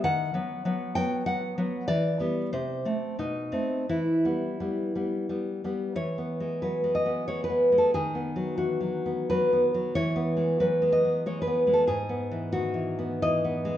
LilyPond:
\new Staff \with { instrumentName = "Nylon-string guitar" } { \time 3/4 \key e \minor \tempo 4 = 92 << { fis''4. g''8 fis''4 | d''4 c''4 dis'4 | e'2 r4 | \key e \major cis''4 b'8 dis''8 cis''16 b'8 a'16 |
gis'4 fis'4 b'4 | cis''4 b'8 dis''8 cis''16 b'8 a'16 | gis'4 fis'4 dis''4 | } \\ { dis8 <fis b>8 <fis b>8 <fis b>8 <fis b>8 <fis b>8 | e8 <g b>8 c8 <a c'>8 b,8 <a c'>8 | e8 <g b>8 <g b>8 <g b>8 <g b>8 <g b>8 | \tuplet 3/2 { e8 b8 gis8 fis8 gis8 b8 gis8 b8 gis8 } |
\tuplet 3/2 { dis8 b8 fis8 e8 fis8 b8 fis8 b8 fis8 } | \tuplet 3/2 { e8 b8 gis8 fis8 gis8 b8 gis8 b8 gis8 } | \tuplet 3/2 { gis,8 b8 e8 dis8 e8 b8 e8 b8 gis8 } | } >> }